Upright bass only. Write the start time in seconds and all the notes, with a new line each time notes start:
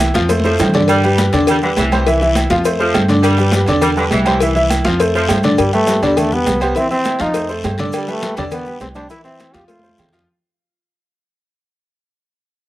0.15 F2
0.60 G2
1.33 E2
1.77 C2
2.50 F2
2.95 G2
3.68 E2
4.12 C2
4.86 F2
5.30 G2
5.59 G2
6.02 E2
6.46 C2
7.20 F2
7.64 G2
8.38 E2
8.80 C2
9.54 F2
9.98 F2